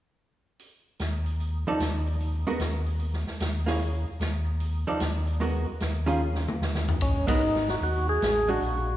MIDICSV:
0, 0, Header, 1, 5, 480
1, 0, Start_track
1, 0, Key_signature, 5, "minor"
1, 0, Tempo, 401311
1, 712, Time_signature, 4, 2, 24, 8
1, 10728, End_track
2, 0, Start_track
2, 0, Title_t, "Tonewheel organ"
2, 0, Program_c, 0, 16
2, 8396, Note_on_c, 0, 61, 64
2, 8687, Note_off_c, 0, 61, 0
2, 8717, Note_on_c, 0, 63, 81
2, 9206, Note_off_c, 0, 63, 0
2, 9208, Note_on_c, 0, 66, 72
2, 9277, Note_off_c, 0, 66, 0
2, 9371, Note_on_c, 0, 66, 76
2, 9656, Note_off_c, 0, 66, 0
2, 9677, Note_on_c, 0, 68, 89
2, 10158, Note_on_c, 0, 66, 76
2, 10167, Note_off_c, 0, 68, 0
2, 10728, Note_off_c, 0, 66, 0
2, 10728, End_track
3, 0, Start_track
3, 0, Title_t, "Hollow-body jazz guitar"
3, 0, Program_c, 1, 26
3, 1998, Note_on_c, 1, 53, 50
3, 2006, Note_on_c, 1, 63, 51
3, 2007, Note_on_c, 1, 69, 59
3, 2010, Note_on_c, 1, 74, 55
3, 2141, Note_off_c, 1, 53, 0
3, 2145, Note_off_c, 1, 63, 0
3, 2145, Note_off_c, 1, 69, 0
3, 2147, Note_off_c, 1, 74, 0
3, 2951, Note_on_c, 1, 56, 49
3, 2956, Note_on_c, 1, 59, 54
3, 2961, Note_on_c, 1, 66, 56
3, 2966, Note_on_c, 1, 70, 57
3, 3097, Note_off_c, 1, 56, 0
3, 3100, Note_off_c, 1, 59, 0
3, 3102, Note_off_c, 1, 66, 0
3, 3105, Note_off_c, 1, 70, 0
3, 4382, Note_on_c, 1, 58, 47
3, 4396, Note_on_c, 1, 64, 44
3, 4401, Note_on_c, 1, 68, 52
3, 4404, Note_on_c, 1, 73, 50
3, 4533, Note_off_c, 1, 58, 0
3, 4540, Note_off_c, 1, 64, 0
3, 4542, Note_off_c, 1, 68, 0
3, 4544, Note_off_c, 1, 73, 0
3, 5827, Note_on_c, 1, 53, 47
3, 5829, Note_on_c, 1, 63, 46
3, 5832, Note_on_c, 1, 69, 46
3, 5840, Note_on_c, 1, 74, 50
3, 5976, Note_off_c, 1, 53, 0
3, 5976, Note_off_c, 1, 63, 0
3, 5978, Note_off_c, 1, 69, 0
3, 5982, Note_off_c, 1, 74, 0
3, 6460, Note_on_c, 1, 56, 42
3, 6470, Note_on_c, 1, 59, 43
3, 6473, Note_on_c, 1, 70, 45
3, 6476, Note_on_c, 1, 66, 48
3, 6750, Note_off_c, 1, 56, 0
3, 6755, Note_off_c, 1, 59, 0
3, 6757, Note_off_c, 1, 70, 0
3, 6758, Note_off_c, 1, 66, 0
3, 7253, Note_on_c, 1, 61, 53
3, 7256, Note_on_c, 1, 51, 51
3, 7264, Note_on_c, 1, 65, 53
3, 7265, Note_on_c, 1, 68, 57
3, 7408, Note_off_c, 1, 61, 0
3, 7410, Note_off_c, 1, 51, 0
3, 7414, Note_off_c, 1, 65, 0
3, 7415, Note_off_c, 1, 68, 0
3, 8697, Note_on_c, 1, 56, 60
3, 8704, Note_on_c, 1, 59, 60
3, 8713, Note_on_c, 1, 66, 60
3, 8718, Note_on_c, 1, 70, 68
3, 8850, Note_off_c, 1, 56, 0
3, 8854, Note_off_c, 1, 59, 0
3, 8858, Note_off_c, 1, 66, 0
3, 8861, Note_off_c, 1, 70, 0
3, 10148, Note_on_c, 1, 56, 49
3, 10158, Note_on_c, 1, 62, 52
3, 10165, Note_on_c, 1, 66, 50
3, 10295, Note_off_c, 1, 56, 0
3, 10300, Note_off_c, 1, 62, 0
3, 10304, Note_off_c, 1, 66, 0
3, 10728, End_track
4, 0, Start_track
4, 0, Title_t, "Tonewheel organ"
4, 0, Program_c, 2, 16
4, 1193, Note_on_c, 2, 39, 64
4, 1973, Note_off_c, 2, 39, 0
4, 2152, Note_on_c, 2, 39, 69
4, 2933, Note_off_c, 2, 39, 0
4, 3101, Note_on_c, 2, 39, 64
4, 3887, Note_off_c, 2, 39, 0
4, 4065, Note_on_c, 2, 39, 69
4, 4850, Note_off_c, 2, 39, 0
4, 5019, Note_on_c, 2, 39, 70
4, 5806, Note_off_c, 2, 39, 0
4, 5984, Note_on_c, 2, 39, 73
4, 6769, Note_off_c, 2, 39, 0
4, 6954, Note_on_c, 2, 39, 68
4, 7734, Note_off_c, 2, 39, 0
4, 7899, Note_on_c, 2, 39, 67
4, 8389, Note_on_c, 2, 32, 71
4, 8686, Note_off_c, 2, 39, 0
4, 9303, Note_off_c, 2, 32, 0
4, 9344, Note_on_c, 2, 39, 73
4, 9794, Note_off_c, 2, 39, 0
4, 9824, Note_on_c, 2, 33, 67
4, 10274, Note_off_c, 2, 33, 0
4, 10299, Note_on_c, 2, 34, 74
4, 10728, Note_off_c, 2, 34, 0
4, 10728, End_track
5, 0, Start_track
5, 0, Title_t, "Drums"
5, 712, Note_on_c, 9, 46, 35
5, 831, Note_off_c, 9, 46, 0
5, 1191, Note_on_c, 9, 42, 41
5, 1196, Note_on_c, 9, 38, 46
5, 1311, Note_off_c, 9, 42, 0
5, 1315, Note_off_c, 9, 38, 0
5, 1507, Note_on_c, 9, 46, 30
5, 1627, Note_off_c, 9, 46, 0
5, 1677, Note_on_c, 9, 46, 33
5, 1796, Note_off_c, 9, 46, 0
5, 2157, Note_on_c, 9, 42, 42
5, 2161, Note_on_c, 9, 38, 52
5, 2276, Note_off_c, 9, 42, 0
5, 2281, Note_off_c, 9, 38, 0
5, 2469, Note_on_c, 9, 46, 28
5, 2588, Note_off_c, 9, 46, 0
5, 2638, Note_on_c, 9, 46, 37
5, 2757, Note_off_c, 9, 46, 0
5, 3106, Note_on_c, 9, 42, 41
5, 3111, Note_on_c, 9, 38, 46
5, 3226, Note_off_c, 9, 42, 0
5, 3231, Note_off_c, 9, 38, 0
5, 3425, Note_on_c, 9, 46, 32
5, 3544, Note_off_c, 9, 46, 0
5, 3581, Note_on_c, 9, 46, 35
5, 3701, Note_off_c, 9, 46, 0
5, 3748, Note_on_c, 9, 38, 23
5, 3868, Note_off_c, 9, 38, 0
5, 3913, Note_on_c, 9, 38, 34
5, 4033, Note_off_c, 9, 38, 0
5, 4070, Note_on_c, 9, 42, 43
5, 4075, Note_on_c, 9, 38, 55
5, 4190, Note_off_c, 9, 42, 0
5, 4195, Note_off_c, 9, 38, 0
5, 4387, Note_on_c, 9, 38, 41
5, 4507, Note_off_c, 9, 38, 0
5, 4541, Note_on_c, 9, 46, 36
5, 4660, Note_off_c, 9, 46, 0
5, 5030, Note_on_c, 9, 42, 43
5, 5035, Note_on_c, 9, 38, 50
5, 5149, Note_off_c, 9, 42, 0
5, 5154, Note_off_c, 9, 38, 0
5, 5504, Note_on_c, 9, 46, 36
5, 5623, Note_off_c, 9, 46, 0
5, 5982, Note_on_c, 9, 42, 44
5, 5987, Note_on_c, 9, 38, 54
5, 6102, Note_off_c, 9, 42, 0
5, 6106, Note_off_c, 9, 38, 0
5, 6303, Note_on_c, 9, 46, 29
5, 6423, Note_off_c, 9, 46, 0
5, 6463, Note_on_c, 9, 46, 36
5, 6583, Note_off_c, 9, 46, 0
5, 6942, Note_on_c, 9, 42, 41
5, 6947, Note_on_c, 9, 38, 50
5, 7062, Note_off_c, 9, 42, 0
5, 7067, Note_off_c, 9, 38, 0
5, 7255, Note_on_c, 9, 46, 32
5, 7375, Note_off_c, 9, 46, 0
5, 7593, Note_on_c, 9, 38, 37
5, 7713, Note_off_c, 9, 38, 0
5, 7755, Note_on_c, 9, 47, 52
5, 7875, Note_off_c, 9, 47, 0
5, 7918, Note_on_c, 9, 38, 50
5, 8037, Note_off_c, 9, 38, 0
5, 8074, Note_on_c, 9, 38, 53
5, 8193, Note_off_c, 9, 38, 0
5, 8233, Note_on_c, 9, 43, 67
5, 8353, Note_off_c, 9, 43, 0
5, 8383, Note_on_c, 9, 51, 56
5, 8390, Note_on_c, 9, 36, 59
5, 8502, Note_off_c, 9, 51, 0
5, 8510, Note_off_c, 9, 36, 0
5, 8708, Note_on_c, 9, 36, 72
5, 8709, Note_on_c, 9, 51, 61
5, 8828, Note_off_c, 9, 36, 0
5, 8829, Note_off_c, 9, 51, 0
5, 9036, Note_on_c, 9, 38, 26
5, 9156, Note_off_c, 9, 38, 0
5, 9190, Note_on_c, 9, 38, 36
5, 9310, Note_off_c, 9, 38, 0
5, 9351, Note_on_c, 9, 46, 35
5, 9471, Note_off_c, 9, 46, 0
5, 9832, Note_on_c, 9, 42, 44
5, 9837, Note_on_c, 9, 38, 60
5, 9952, Note_off_c, 9, 42, 0
5, 9957, Note_off_c, 9, 38, 0
5, 10145, Note_on_c, 9, 46, 30
5, 10264, Note_off_c, 9, 46, 0
5, 10312, Note_on_c, 9, 46, 38
5, 10432, Note_off_c, 9, 46, 0
5, 10728, End_track
0, 0, End_of_file